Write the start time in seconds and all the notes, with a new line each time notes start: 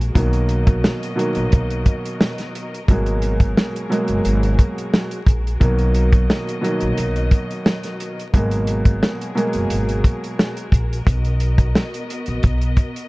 Already playing: A#1 G#3 F#4 G#4 A#4
0.01 closed hi-hat
0.14 B1 B2 D#3 F#3 A#3 D#5, kick, closed hi-hat
0.33 closed hi-hat
0.49 closed hi-hat
0.67 kick, closed hi-hat
0.84 snare
1.03 closed hi-hat
1.16 B2 D#3 F#3 A#3, closed hi-hat
1.35 A#1, closed hi-hat
1.52 B1, kick, closed hi-hat
1.70 closed hi-hat
1.86 kick, closed hi-hat
2.05 closed hi-hat
2.21 snare
2.38 snare, closed hi-hat
2.55 closed hi-hat
2.74 closed hi-hat
2.88 G#1 B2 F#3 G#3 A#3 F#4 G#4, kick, closed hi-hat
3.06 closed hi-hat
3.22 closed hi-hat
3.40 kick, closed hi-hat
3.57 snare
3.76 closed hi-hat
3.89 B2 F#3 G#3 A#3, closed hi-hat
4.08 F#1, closed hi-hat
4.25 G#1, closed hi-hat
4.43 closed hi-hat
4.59 kick, closed hi-hat
4.78 closed hi-hat
4.94 snare
5.11 closed hi-hat
5.26 A#1, kick, closed hi-hat
5.47 closed hi-hat
5.60 B1 B2 D#3 F#3 A#3 D#5, kick, closed hi-hat
5.79 closed hi-hat
5.94 closed hi-hat
6.13 kick, closed hi-hat
6.30 snare
6.49 closed hi-hat
6.61 B2 D#3 F#3 A#3, closed hi-hat
6.80 A#1, closed hi-hat
6.97 B1, closed hi-hat
7.16 closed hi-hat
7.31 kick, closed hi-hat
7.51 closed hi-hat
7.66 snare
7.83 snare, closed hi-hat
8.00 closed hi-hat
8.20 closed hi-hat
8.34 G#1 B2 F#3 G#3 A#3 F#4 G#4 A#4, kick, closed hi-hat
8.51 closed hi-hat
8.67 closed hi-hat
8.85 kick, closed hi-hat
9.03 snare
9.21 closed hi-hat
9.35 B2 F#3 G#3 A#3, closed hi-hat
9.53 F#1, closed hi-hat
9.70 G#1, closed hi-hat
9.89 closed hi-hat
10.04 kick, closed hi-hat
10.24 closed hi-hat
10.39 snare
10.57 closed hi-hat
10.72 A#1, kick, closed hi-hat
10.93 closed hi-hat
11.05 B1 B3 D#5, kick, closed hi-hat
11.25 closed hi-hat
11.40 closed hi-hat
11.58 kick, closed hi-hat
11.75 snare
11.94 closed hi-hat
12.10 closed hi-hat
12.26 A#1, closed hi-hat
12.43 B1, kick, closed hi-hat
12.61 closed hi-hat
12.77 kick, closed hi-hat
12.96 closed hi-hat